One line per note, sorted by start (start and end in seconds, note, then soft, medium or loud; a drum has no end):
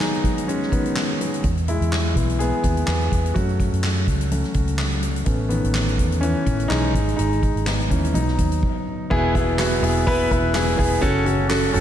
0.00 0.33 D#3 soft
0.00 0.45 F#3 medium
0.00 0.33 G#3 soft
0.00 0.72 B3 medium
0.00 0.44 D#4 loud
0.00 1.46 F#4 medium
0.00 1.45 G#4 medium
0.00 snare loud
0.00 clap medium
0.14 closed hi-hat soft
0.24 kick medium
0.24 closed hi-hat medium
0.38 closed hi-hat soft
0.48 0.71 G#3 medium
0.48 0.70 C#4 medium
0.48 closed hi-hat medium
0.62 snare soft
0.72 1.17 D#3 soft
0.72 1.17 B3 medium
0.72 kick medium
0.72 closed hi-hat medium
0.85 closed hi-hat soft
0.96 snare medium
0.96 clap medium
1.20 1.42 D#3 soft
1.20 1.42 G#3 soft
1.20 1.42 B3 soft
1.20 closed hi-hat medium
1.34 closed hi-hat soft
1.44 1.78 E2 medium
1.44 kick loud
1.44 closed hi-hat medium
1.57 closed hi-hat soft
1.68 2.14 G#3 medium
1.68 2.36 E4 medium
1.68 closed hi-hat medium
1.81 2.13 E2 medium
1.81 closed hi-hat soft
1.92 snare loud
1.92 clap medium
2.15 2.50 B1 medium
2.15 2.84 E3 soft
2.15 2.84 G#3 soft
2.15 2.40 B3 soft
2.15 kick medium
2.15 closed hi-hat medium
2.29 closed hi-hat soft
2.39 2.85 B3 medium
2.39 2.85 G#4 medium
2.39 closed hi-hat medium
2.64 2.86 D#2 medium
2.64 kick medium
2.64 closed hi-hat medium
2.77 closed hi-hat soft
2.86 3.10 E2 medium
2.86 3.33 B3 medium
2.86 3.32 G#4 medium
2.86 snare medium
2.86 clap medium
3.01 closed hi-hat soft
3.12 3.34 E2 medium
3.12 kick medium
3.12 closed hi-hat medium
3.26 closed hi-hat soft
3.34 3.71 F#2 medium
3.34 4.30 F#3 soft
3.34 4.30 A3 medium
3.34 4.30 C#4 medium
3.34 4.75 F#4 medium
3.34 kick loud
3.34 closed hi-hat medium
3.49 closed hi-hat soft
3.60 kick medium
3.60 closed hi-hat medium
3.72 4.05 F#2 medium
3.72 closed hi-hat soft
3.83 snare loud
3.83 clap medium
4.07 4.42 C#2 medium
4.07 kick medium
4.07 closed hi-hat medium
4.21 closed hi-hat soft
4.31 4.53 F#3 soft
4.31 4.53 A3 soft
4.31 4.53 C#4 soft
4.31 closed hi-hat medium
4.44 snare soft
4.44 closed hi-hat soft
4.54 5.23 C#2 medium
4.54 kick medium
4.54 closed hi-hat medium
4.67 closed hi-hat soft
4.78 snare loud
4.78 clap medium
4.92 closed hi-hat soft
5.03 closed hi-hat medium
5.16 closed hi-hat soft
5.25 5.62 A1 medium
5.25 5.95 A3 soft
5.25 5.48 B3 soft
5.25 5.96 C#4 medium
5.25 kick loud
5.25 closed hi-hat medium
5.49 6.19 D#3 medium
5.49 6.18 B3 medium
5.49 closed hi-hat medium
5.64 5.96 A1 medium
5.64 closed hi-hat soft
5.74 snare medium
5.74 clap medium
5.88 closed hi-hat soft
5.98 6.33 E2 medium
5.98 kick medium
5.98 closed hi-hat medium
6.12 closed hi-hat soft
6.21 6.68 E3 medium
6.21 6.67 C#4 medium
6.21 closed hi-hat medium
6.46 6.69 A1 medium
6.46 kick medium
6.46 closed hi-hat medium
6.60 closed hi-hat soft
6.68 6.93 B1 medium
6.68 7.15 G#3 medium
6.68 7.15 D#4 medium
6.68 snare medium
6.68 clap medium
6.94 7.17 G#1 medium
6.94 kick medium
6.94 closed hi-hat medium
7.08 closed hi-hat soft
7.16 7.54 G#1 medium
7.16 7.64 G#3 medium
7.16 7.65 D#4 medium
7.16 closed hi-hat medium
7.33 closed hi-hat soft
7.43 kick medium
7.43 closed hi-hat medium
7.55 7.88 G#1 medium
7.55 closed hi-hat soft
7.66 8.12 G#3 soft
7.66 8.12 B3 soft
7.66 8.12 D#4 medium
7.66 snare loud
7.66 clap medium
7.81 closed hi-hat soft
7.90 8.13 D#2 medium
7.90 8.13 E3 medium
7.90 8.15 C#4 medium
7.90 kick medium
7.90 closed hi-hat medium
8.04 closed hi-hat soft
8.14 8.37 B1 medium
8.14 8.83 F#3 medium
8.14 8.83 B3 soft
8.14 8.83 D#4 medium
8.14 closed hi-hat medium
8.28 snare soft
8.38 8.62 D#2 medium
8.38 kick medium
8.38 closed hi-hat medium
8.52 closed hi-hat soft
8.63 kick medium
8.63 crash medium
9.10 9.79 E1 loud
9.10 9.79 B2 medium
9.10 9.32 B3 loud
9.10 9.32 E4 loud
9.10 9.32 G#4 loud
9.10 kick loud
9.10 crash medium
9.35 9.56 B3 medium
9.35 9.56 E4 medium
9.35 9.57 G#4 medium
9.35 kick loud
9.35 hi-hat pedal medium
9.35 open hi-hat medium
9.58 9.80 B3 medium
9.58 9.80 E4 medium
9.58 9.80 F#4 medium
9.58 snare loud
9.58 clap medium
9.58 hi-hat pedal medium
9.58 open hi-hat medium
9.82 10.27 E1 medium
9.82 10.04 B3 medium
9.82 10.04 E4 medium
9.82 10.04 G#4 medium
9.82 hi-hat pedal medium
9.82 open hi-hat medium
10.07 10.28 B3 loud
10.07 10.28 E4 loud
10.07 10.28 B4 loud
10.07 kick medium
10.07 hi-hat pedal medium
10.07 open hi-hat medium
10.31 10.75 E1 medium
10.31 10.52 B3 medium
10.31 10.52 E4 medium
10.31 10.52 B4 loud
10.31 kick medium
10.31 hi-hat pedal medium
10.31 open hi-hat medium
10.54 10.75 B3 medium
10.54 10.76 E4 medium
10.54 10.76 G#4 loud
10.54 snare loud
10.54 clap medium
10.54 hi-hat pedal medium
10.54 open hi-hat medium
10.78 11.01 E1 medium
10.78 10.99 B3 medium
10.78 11.00 E4 medium
10.78 11.00 G#4 medium
10.78 kick loud
10.78 hi-hat pedal medium
10.78 open hi-hat medium
11.01 11.71 F#1 loud
11.01 11.70 C#3 medium
11.01 11.23 C#4 loud
11.01 11.23 F#4 loud
11.01 11.23 A4 loud
11.01 kick loud
11.01 hi-hat pedal medium
11.01 open hi-hat medium
11.25 11.47 C#4 medium
11.25 11.47 F#4 medium
11.25 11.47 A4 medium
11.25 hi-hat pedal medium
11.25 open hi-hat medium
11.48 11.71 C#4 medium
11.48 11.71 F#4 medium
11.48 11.71 A4 medium
11.48 snare loud
11.48 clap medium
11.48 hi-hat pedal medium
11.48 open hi-hat medium
11.73 11.80 F#1 loud
11.73 11.80 C#4 medium
11.73 11.80 F#4 medium
11.73 11.80 A4 medium
11.73 hi-hat pedal medium
11.73 open hi-hat medium